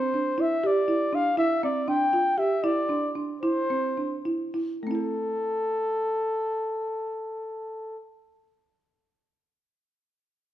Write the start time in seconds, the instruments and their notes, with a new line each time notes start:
Already playing: flugelhorn C5
0.14 marimba D4
0.38 marimba E4, flugelhorn E5
0.64 marimba G4, flugelhorn D5
0.88 marimba E4
1.13 marimba D4, flugelhorn F5
1.37 marimba E4, flugelhorn E5
1.63 marimba C4, flugelhorn D5
1.88 marimba D4, flugelhorn G5
2.13 marimba F4
2.38 marimba G4, flugelhorn E5
2.63 marimba E4, flugelhorn D5
2.89 marimba D4
3.15 marimba D4
3.42 marimba E4, flugelhorn C5
3.70 marimba C4
3.97 marimba D4
4.25 marimba E4
4.54 marimba E4
4.83 marimba A3 C4, flugelhorn A4
4.91 marimba E4 A4